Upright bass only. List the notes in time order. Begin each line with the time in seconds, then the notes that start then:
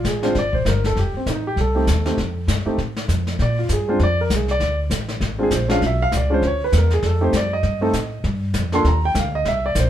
0.04 A1
0.35 G#1
0.65 G1
0.96 F1
1.13 muted upright bass stroke
1.26 A1
1.56 C2
1.87 D#2
2.18 F2
2.47 G2
2.65 muted upright bass stroke
2.78 A2
3.08 F2
3.39 A#2
3.69 G2
3.99 F2
4.30 C2
4.60 D2
4.90 A1
5.20 G#1
5.51 A#1
5.81 B1
6.12 C#2
6.42 D2
6.72 E2
7.03 F2
7.33 F#2
7.63 G2
7.93 A2
8.24 G2
8.54 F2
8.84 D#2
9.15 D2
9.45 C2
9.75 A#1